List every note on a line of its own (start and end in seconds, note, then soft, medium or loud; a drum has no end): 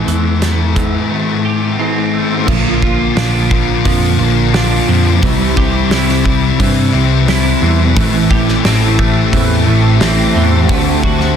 0.00 0.74 A2 medium
0.00 0.74 E3 medium
0.00 0.41 A3 medium
0.00 0.75 A3 medium
0.00 0.75 C4 medium
0.00 0.77 C4 medium
0.00 0.75 E4 medium
0.00 0.42 G4 medium
0.00 0.73 A4 medium
0.07 0.95 E2 medium
0.07 0.75 E3 medium
0.07 closed hi-hat medium
0.42 1.09 A3 medium
0.42 snare loud
0.42 closed hi-hat medium
0.75 1.76 A2 medium
0.75 2.47 E3 medium
0.75 1.77 E3 medium
0.75 1.78 A3 medium
0.75 1.77 C4 medium
0.75 1.77 E4 medium
0.75 1.77 A4 medium
0.75 kick medium
0.75 closed hi-hat medium
1.10 2.46 A2 medium
1.10 2.46 E3 medium
1.10 2.12 A3 medium
1.10 2.47 A3 medium
1.45 2.48 G4 medium
1.77 2.45 A2 medium
1.77 2.46 E3 medium
1.77 2.46 A3 medium
1.77 2.48 C4 medium
1.77 2.46 C4 medium
1.77 2.46 E4 medium
1.77 2.47 A4 medium
2.14 2.48 A3 medium
2.47 3.07 A#1 medium
2.47 3.50 A#2 medium
2.47 3.14 D3 medium
2.47 3.85 F3 medium
2.47 3.15 F3 medium
2.47 3.16 A#3 loud
2.47 3.17 F4 loud
2.47 kick loud
2.47 crash loud
2.82 3.16 F3 medium
2.82 3.17 A#3 medium
2.82 4.54 F4 medium
2.82 kick medium
3.16 3.75 A#1 loud
3.16 3.84 A#2 medium
3.16 3.84 D3 medium
3.16 3.85 F3 medium
3.16 3.85 A#3 medium
3.16 4.52 D4 medium
3.16 3.86 F4 medium
3.16 snare loud
3.16 open hi-hat medium
3.51 3.85 F3 medium
3.51 3.86 A#3 medium
3.51 kick medium
3.85 4.15 F2 medium
3.85 4.54 A#2 loud
3.85 4.52 D3 loud
3.85 4.87 F3 medium
3.85 4.21 F3 loud
3.85 4.19 A#3 loud
3.85 4.18 F4 loud
3.85 kick medium
3.85 open hi-hat medium
4.19 4.78 A#1 medium
4.19 4.53 F3 medium
4.19 4.54 A#3 medium
4.19 4.55 F4 medium
4.53 5.20 A#2 medium
4.53 5.20 D3 medium
4.53 5.21 F3 medium
4.53 5.21 A#3 medium
4.53 5.22 D4 medium
4.53 5.21 F4 medium
4.53 snare loud
4.53 open hi-hat medium
4.87 5.18 F2 medium
4.87 5.22 F3 medium
4.87 5.21 F3 medium
4.87 5.20 A#3 medium
5.22 5.81 C2 medium
5.22 5.89 C3 loud
5.22 6.59 E3 medium
5.22 5.90 G3 medium
5.22 5.92 C4 medium
5.22 5.92 E4 loud
5.22 kick loud
5.22 open hi-hat medium
5.56 5.91 G3 medium
5.56 5.92 C4 medium
5.56 7.28 G4 medium
5.56 kick loud
5.90 6.49 C2 medium
5.90 6.58 C3 medium
5.90 6.59 G3 medium
5.90 6.61 C4 medium
5.90 7.28 E4 medium
5.90 6.61 E4 medium
5.90 snare loud
5.90 open hi-hat medium
6.09 snare soft
6.24 6.59 G3 medium
6.24 6.61 C4 medium
6.24 kick medium
6.59 6.89 G2 loud
6.59 7.25 C3 medium
6.59 7.61 E3 medium
6.59 6.94 G3 loud
6.59 6.94 C4 loud
6.59 6.92 E4 loud
6.59 kick medium
6.59 open hi-hat medium
6.93 7.52 C2 medium
6.93 7.27 G3 medium
6.93 7.28 C4 medium
6.93 7.28 E4 medium
7.27 7.94 C3 medium
7.27 7.94 G3 medium
7.27 7.97 C4 medium
7.27 7.97 E4 medium
7.27 7.95 E4 medium
7.27 snare loud
7.27 open hi-hat medium
7.61 7.91 E2 medium
7.61 7.95 E3 medium
7.61 7.95 G3 medium
7.61 7.98 C4 medium
7.96 8.55 A1 loud
7.96 8.98 A2 medium
7.96 8.62 E3 medium
7.96 9.32 E3 medium
7.96 8.64 A3 medium
7.96 8.65 C4 loud
7.96 8.65 E4 loud
7.96 10.67 G4 medium
7.96 11.37 C5 medium
7.96 10.67 E5 medium
7.96 10.67 A5 medium
7.96 kick loud
7.96 open hi-hat medium
8.30 8.65 E3 medium
8.30 8.66 A3 medium
8.30 10.01 G4 medium
8.30 kick medium
8.48 snare soft
8.64 9.23 A1 medium
8.64 9.31 A2 medium
8.64 9.31 E3 medium
8.64 9.33 A3 medium
8.64 10.00 C4 medium
8.64 9.33 C4 medium
8.64 9.34 E4 medium
8.64 snare loud
8.64 open hi-hat medium
8.98 9.33 E3 medium
8.98 9.34 A3 medium
8.98 9.67 A3 medium
8.98 kick medium
9.32 9.62 E2 loud
9.32 10.01 A2 loud
9.32 9.99 E3 medium
9.32 10.35 E3 medium
9.32 9.69 A3 loud
9.32 9.67 C4 loud
9.32 9.65 E4 loud
9.32 kick medium
9.32 open hi-hat medium
9.66 10.25 A1 medium
9.66 10.01 E3 medium
9.66 10.69 A3 medium
9.66 10.01 A3 medium
9.66 10.01 C4 medium
9.66 10.02 E4 medium
10.00 10.67 A2 medium
10.00 10.67 E3 medium
10.00 10.69 A3 medium
10.00 10.69 C4 medium
10.00 10.68 C4 medium
10.00 10.68 E4 medium
10.00 snare loud
10.00 open hi-hat medium
10.35 10.65 E2 medium
10.35 10.70 E3 medium
10.35 10.69 E3 medium
10.35 10.72 A3 medium
10.68 11.28 D2 medium
10.68 11.35 D3 medium
10.68 11.37 A3 loud
10.68 11.37 A3 medium
10.68 11.37 C4 loud
10.68 11.02 D4 loud
10.68 11.37 F#4 medium
10.68 11.37 F#4 loud
10.68 11.37 D5 medium
10.68 11.37 A5 medium
10.68 kick loud
10.68 open hi-hat medium
11.03 11.37 A3 medium
11.03 11.37 D4 medium
11.03 11.37 F#4 medium
11.03 kick medium
11.20 snare soft